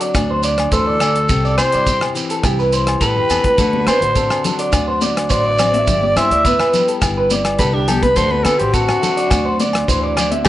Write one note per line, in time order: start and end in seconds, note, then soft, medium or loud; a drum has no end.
0.00 1.00 D3 medium
0.00 0.73 F#3 medium
0.00 1.88 C4 medium
0.00 0.15 D4 medium
0.00 1.30 F#4 medium
0.00 0.28 D5 medium
0.00 closed hi-hat medium
0.00 shekere soft
0.14 0.68 D2 loud
0.14 1.27 D4 medium
0.14 kick medium
0.14 cross-stick medium
0.14 closed hi-hat medium
0.14 low agogo medium
0.14 shekere medium
0.31 0.43 C5 medium
0.43 0.71 D5 medium
0.43 closed hi-hat soft
0.43 shekere medium
0.58 cross-stick medium
0.58 closed hi-hat medium
0.58 low agogo medium
0.72 1.26 D2 medium
0.72 1.01 E3 medium
0.72 1.54 A4 medium
0.72 0.87 C5 medium
0.72 kick medium
0.72 closed hi-hat soft
0.72 shekere medium
0.87 1.00 D5 medium
1.00 1.30 D3 medium
1.00 1.15 D5 medium
1.00 cross-stick medium
1.00 closed hi-hat soft
1.00 low agogo medium
1.00 shekere medium
1.16 closed hi-hat medium
1.29 1.56 C2 loud
1.29 2.16 C3 medium
1.29 3.01 G4 medium
1.29 kick medium
1.29 closed hi-hat soft
1.29 shekere medium
1.45 1.58 D5 medium
1.45 shekere soft
1.58 1.72 C3 medium
1.58 2.43 E4 medium
1.58 2.11 C5 medium
1.58 1.73 C5 medium
1.58 cross-stick medium
1.58 closed hi-hat soft
1.58 low agogo medium
1.58 shekere medium
1.72 2.01 G2 medium
1.72 1.86 D5 medium
1.72 closed hi-hat soft
1.72 shekere soft
1.87 3.29 C4 medium
1.87 kick medium
1.87 closed hi-hat soft
1.87 shekere medium
2.01 cross-stick medium
2.01 low agogo medium
2.15 3.58 E3 medium
2.15 closed hi-hat soft
2.15 shekere medium
2.30 2.44 A4 medium
2.30 closed hi-hat medium
2.30 shekere soft
2.43 2.98 C2 medium
2.43 3.56 E4 medium
2.43 2.59 G4 medium
2.43 kick medium
2.43 cross-stick medium
2.43 closed hi-hat soft
2.43 low agogo medium
2.43 shekere loud
2.59 2.72 B4 medium
2.59 shekere soft
2.72 3.00 C5 medium
2.72 closed hi-hat soft
2.72 shekere medium
2.87 cross-stick medium
2.87 closed hi-hat soft
2.87 low agogo medium
3.01 3.15 A1 medium
3.01 3.56 G2 medium
3.01 3.56 G4 medium
3.01 3.16 A4 medium
3.01 3.83 B4 medium
3.01 kick medium
3.01 closed hi-hat soft
3.01 shekere loud
3.16 3.29 F#2 medium
3.16 3.30 G4 medium
3.30 3.43 E2 medium
3.30 3.56 C4 medium
3.30 3.44 A4 medium
3.30 closed hi-hat soft
3.30 low agogo medium
3.30 shekere medium
3.44 3.57 D2 medium
3.44 3.58 B4 medium
3.44 kick medium
3.44 closed hi-hat medium
3.58 3.85 D2 medium
3.58 5.85 D3 medium
3.58 5.29 F#4 medium
3.58 3.86 A4 medium
3.58 kick medium
3.58 closed hi-hat medium
3.58 low conga medium
3.58 shekere medium
3.73 high conga medium
3.87 4.00 D3 medium
3.87 4.73 D4 medium
3.87 4.01 B4 medium
3.87 4.41 C5 medium
3.87 cross-stick medium
3.87 closed hi-hat soft
3.87 high conga medium
3.87 low agogo medium
3.87 shekere medium
4.01 4.28 A1 medium
4.01 4.15 C5 medium
4.01 closed hi-hat medium
4.15 5.58 C4 medium
4.15 4.43 A4 medium
4.15 kick medium
4.15 closed hi-hat medium
4.15 shekere medium
4.30 cross-stick medium
4.30 low agogo medium
4.30 shekere soft
4.44 5.85 F#3 medium
4.44 4.59 A4 medium
4.44 closed hi-hat soft
4.44 low conga medium
4.44 shekere medium
4.59 4.87 D5 medium
4.59 closed hi-hat medium
4.59 shekere soft
4.72 5.26 D2 medium
4.72 6.17 D4 medium
4.72 kick medium
4.72 cross-stick medium
4.72 closed hi-hat medium
4.72 low agogo medium
4.72 shekere medium
4.88 5.01 C5 medium
5.01 5.29 D5 medium
5.01 closed hi-hat medium
5.01 high conga medium
5.01 shekere medium
5.17 cross-stick medium
5.17 closed hi-hat medium
5.17 low agogo medium
5.30 5.84 A1 loud
5.30 5.84 A2 medium
5.30 5.88 F#4 medium
5.30 5.44 C5 medium
5.30 6.18 D5 loud
5.30 kick medium
5.30 closed hi-hat soft
5.30 shekere loud
5.46 5.58 D5 medium
5.58 5.85 C4 medium
5.58 5.73 D5 medium
5.58 cross-stick medium
5.58 closed hi-hat medium
5.58 low conga medium
5.58 low agogo medium
5.58 shekere medium
5.74 6.01 E5 medium
5.74 closed hi-hat medium
5.74 high conga medium
5.87 6.14 G1 loud
5.87 8.13 G2 medium
5.87 7.59 G4 medium
5.87 kick medium
5.87 closed hi-hat medium
5.87 low conga medium
5.87 shekere medium
6.03 6.16 D5 medium
6.03 high conga medium
6.16 6.30 G2 medium
6.16 7.01 E4 medium
6.16 6.31 C5 medium
6.16 6.74 E5 medium
6.16 cross-stick medium
6.16 closed hi-hat soft
6.16 high conga medium
6.16 low agogo medium
6.16 shekere medium
6.31 6.58 D2 medium
6.31 6.45 D5 medium
6.31 closed hi-hat medium
6.45 7.88 B3 medium
6.45 6.59 B4 medium
6.45 kick medium
6.45 closed hi-hat medium
6.45 shekere medium
6.59 6.87 B4 medium
6.59 cross-stick medium
6.59 low agogo medium
6.59 shekere soft
6.74 8.14 G3 medium
6.74 closed hi-hat soft
6.74 low conga medium
6.74 shekere medium
6.88 7.02 A4 medium
6.88 closed hi-hat soft
6.88 shekere soft
7.02 7.56 G1 loud
7.02 8.14 E4 medium
7.02 muted clean electric guitar stroke medium
7.02 kick medium
7.02 cross-stick medium
7.02 closed hi-hat soft
7.02 low agogo medium
7.02 shekere medium
7.18 7.31 B4 medium
7.30 7.58 D5 medium
7.30 closed hi-hat medium
7.30 high conga medium
7.30 shekere medium
7.45 cross-stick medium
7.45 closed hi-hat soft
7.45 low agogo medium
7.59 8.13 C2 medium
7.59 8.14 D3 medium
7.59 8.14 G4 medium
7.59 7.74 A4 medium
7.59 7.76 B4 medium
7.59 kick medium
7.59 closed hi-hat soft
7.59 shekere medium
7.74 7.90 D4 medium
7.74 7.88 G4 medium
7.88 8.14 B3 medium
7.88 8.04 G4 medium
7.88 8.02 A4 medium
7.88 closed hi-hat medium
7.88 low conga medium
7.88 low agogo medium
7.88 shekere medium
8.03 8.18 B4 medium
8.03 8.16 B4 medium
8.03 kick medium
8.03 closed hi-hat medium
8.03 high conga medium
8.16 8.44 D2 loud
8.16 10.16 D3 medium
8.16 10.46 F#4 medium
8.16 8.44 A4 medium
8.16 8.33 C5 loud
8.16 kick medium
8.16 closed hi-hat medium
8.16 low conga medium
8.16 shekere medium
8.31 8.45 B4 medium
8.31 high conga medium
8.44 8.59 D3 medium
8.44 9.32 D4 medium
8.44 8.60 A4 medium
8.44 8.59 B4 medium
8.44 cross-stick medium
8.44 closed hi-hat medium
8.44 high conga medium
8.44 low agogo medium
8.44 shekere medium
8.58 8.87 A1 loud
8.58 8.75 G4 medium
8.58 8.73 C5 medium
8.58 closed hi-hat medium
8.74 10.48 C4 medium
8.74 9.88 F#4 loud
8.74 9.01 A4 medium
8.74 kick medium
8.74 closed hi-hat medium
8.74 shekere medium
8.88 cross-stick medium
8.88 low agogo medium
8.88 shekere soft
9.02 9.89 F#3 medium
9.02 9.16 A4 medium
9.02 closed hi-hat medium
9.02 low conga medium
9.02 shekere medium
9.17 9.44 D5 medium
9.17 closed hi-hat medium
9.17 shekere soft
9.31 9.85 D2 loud
9.31 10.43 D4 medium
9.31 kick medium
9.31 cross-stick medium
9.31 closed hi-hat medium
9.31 low agogo medium
9.31 shekere medium
9.45 9.59 C5 medium
9.60 9.87 D5 medium
9.60 closed hi-hat medium
9.60 high conga medium
9.60 shekere medium
9.73 cross-stick medium
9.73 closed hi-hat medium
9.73 low agogo medium
9.88 10.42 D2 medium
9.88 10.17 E3 medium
9.88 10.02 C5 medium
9.88 kick medium
9.88 closed hi-hat medium
9.88 shekere loud
10.04 10.15 D5 medium
10.17 10.46 D3 medium
10.17 10.31 D5 medium
10.17 cross-stick medium
10.17 closed hi-hat medium
10.17 low conga medium
10.17 low agogo medium
10.17 shekere medium
10.31 10.45 E5 medium
10.31 closed hi-hat medium
10.31 high conga medium
10.45 10.48 G4 medium
10.45 10.48 B4 medium
10.45 high conga loud
10.45 low agogo loud